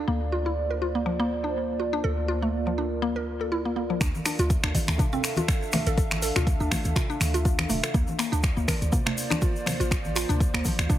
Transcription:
Already playing: D5
0.07 D2 A#3 F4 C5
0.32 F4
0.46 E4
0.70 A#4
0.82 F4
0.95 A#3
1.06 F3
1.20 A#3
1.44 D4
1.80 F4
1.93 D4
2.04 D2 A4 A#4
2.28 F4
2.42 A3
2.67 F3
2.78 D4
3.02 A#3
3.16 A#4
3.41 A4
3.52 E4
3.65 A#3
3.76 A#3
3.90 F3
4.01 D2 D4 A4 E5 F5, finger snap, kick, closed hi-hat, shaker
4.15 high conga, shaker
4.26 D4, finger snap, open hi-hat, shaker
4.39 D2 F4, closed hi-hat, shaker
4.50 kick, closed hi-hat, shaker
4.63 D2 D4, finger snap, shaker
4.75 D5, kick, open hi-hat, high conga, shaker
4.87 D2, finger snap, closed hi-hat, high conga, shaker
4.98 D4, kick, closed hi-hat, low conga, shaker
5.13 C4, low conga, shaker
5.24 finger snap, open hi-hat, shaker
5.36 F4, closed hi-hat, high conga, shaker
5.48 A4, finger snap, kick, closed hi-hat, shaker
5.62 shaker
5.72 A3, finger snap, open hi-hat, high conga, low conga, shaker
5.87 A1 A4, closed hi-hat, shaker
5.98 A4, kick, closed hi-hat, shaker
6.11 finger snap, high conga, shaker
6.22 A4, open hi-hat, shaker
6.36 D2 F4, finger snap, closed hi-hat, low conga, shaker
6.47 kick, closed hi-hat, shaker
6.60 D2 D4, shaker
6.71 A3, finger snap, kick, open hi-hat, high conga, shaker
6.84 D2, closed hi-hat, high conga, shaker
6.96 F4, finger snap, kick, closed hi-hat, low conga, shaker
7.10 D4, shaker
7.20 D2, finger snap, open hi-hat, high conga, shaker
7.34 F4, closed hi-hat, shaker
7.45 F4, kick, closed hi-hat, shaker
7.59 finger snap, high conga, shaker
7.69 D1 A3, open hi-hat, low conga, shaker
7.83 A4, finger snap, closed hi-hat, shaker
7.94 D2 A#3 F4 C5 D5, kick, closed hi-hat, shaker
8.07 high conga, shaker
8.19 A#3, finger snap, open hi-hat, shaker
8.32 D2 D4, closed hi-hat, shaker
8.43 finger snap, kick, closed hi-hat, shaker
8.57 D2 A#3, shaker
8.68 A#4, finger snap, kick, open hi-hat, high conga, shaker
8.82 D2, closed hi-hat, high conga, shaker
8.92 A#3, kick, closed hi-hat, low conga, shaker
9.06 A3, finger snap, low conga, shaker
9.18 open hi-hat, shaker
9.30 D4, finger snap, closed hi-hat, high conga, shaker
9.42 F4, kick, closed hi-hat, shaker
9.56 shaker
9.66 F3, finger snap, open hi-hat, high conga, low conga, shaker
9.80 A1 F4, closed hi-hat, shaker
9.91 F4, finger snap, kick, closed hi-hat, shaker
10.05 high conga, shaker
10.16 F4, finger snap, open hi-hat, shaker
10.29 D2 D4, closed hi-hat, low conga, shaker
10.40 kick, closed hi-hat, shaker
10.54 D2 A#3, finger snap, shaker
10.65 F3, kick, open hi-hat, high conga, shaker
10.79 D2, finger snap, closed hi-hat, high conga, shaker
10.89 D4, kick, closed hi-hat, low conga, shaker

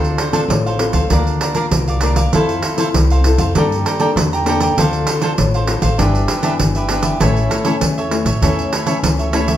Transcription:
Already playing: D2 D3 C4 D4 F4 A4 C5 F5
0.04 pandeiro
0.18 D4 A4 C5 F5, pandeiro
0.32 C4 D4 F4 A4 C5 F5, pandeiro
0.48 A1 A2, pandeiro
0.66 A4 C5 F5, pandeiro
0.79 C4 F4 A4, pandeiro
0.93 D2 A4 C5 F5, pandeiro
1.10 D2 D3 A#3 D4 F4 A#4 D5 F5, pandeiro
1.27 pandeiro
1.41 D4 A#4 D5 F5, pandeiro
1.54 A#3 D4 F4 A#4 D5 F5, pandeiro
1.71 C2 D3, pandeiro
1.88 A#4 D5 F5, pandeiro
2.01 A#3 D4 F4 A#4 D5 F5, pandeiro
2.16 A#4 D5 F5, pandeiro
2.33 F2 F3 C4 E4 A4 C5 F5, pandeiro
2.49 pandeiro
2.62 E4 A4 C5 F5, pandeiro
2.77 C4 E4 A4 C5 F5, pandeiro
2.94 C2 C3, pandeiro
3.10 A4 C5 F5, pandeiro
3.24 C4 E4 A4, pandeiro
3.38 F2 A4 C5 F5, pandeiro
3.55 G2 G3 A#3 D4 A4 D5 G5 A#5, pandeiro
3.72 pandeiro
3.86 A4 D5 G5 A#5, pandeiro
4.00 A#3 D4 A4 D5 G5 A#5, pandeiro
4.16 E2 D3, pandeiro
4.33 D5 G5 A#5, pandeiro
4.45 A#3 D4 A4 D5 G5, pandeiro
4.49 A#5
4.60 D5 G5 A#5, pandeiro
4.77 D2 D3 C4 D4 F4 A4 C5 F5, pandeiro
4.93 pandeiro
5.07 D4 A4 C5 F5, pandeiro
5.21 C4 D4 F4 A4 C5 F5, pandeiro
5.37 A1 A2, pandeiro
5.54 A4 C5 F5, pandeiro
5.67 C4 F4 A4, pandeiro
5.82 A1 A4 C5 F5, pandeiro
5.98 G1 G2 E3 B3 D4 G4 B4 E5, pandeiro
6.15 pandeiro
6.28 D4 G4 B4 E5, pandeiro
6.42 E3 B3 D4 G4 B4 E5, pandeiro
6.59 G1 D3, pandeiro
6.75 G4 B4 E5, pandeiro
6.89 E3 B3 D4 G4 B4 E5, pandeiro
7.02 G4 B4 E5, pandeiro
7.20 A1 A2 E3 A3 C#4 E4 A4 C#5 E5, pandeiro
7.37 pandeiro
7.50 E4 A4 C#5 E5, pandeiro
7.64 E3 A3 C#4 E4 A4 C#5 E5, pandeiro
7.81 E2 E3, pandeiro
7.98 A4 C#5 E5, pandeiro
8.10 E3 A3 C#4, pandeiro
8.25 A1 A4 C#5 E5, pandeiro
8.41 E2 A2 E3 A3 C#4 E4 A4 C#5 E5, pandeiro
8.59 pandeiro
8.72 E4 A4 C#5 E5, pandeiro
8.86 E3 A3 C#4 E4 A4 C#5 E5, pandeiro
9.03 C#2 E3, pandeiro
9.19 A4 C#5 E5, pandeiro
9.33 E3 A3 C#4 E4 A4 C#5 E5, pandeiro
9.48 A4 C#5 E5, pandeiro

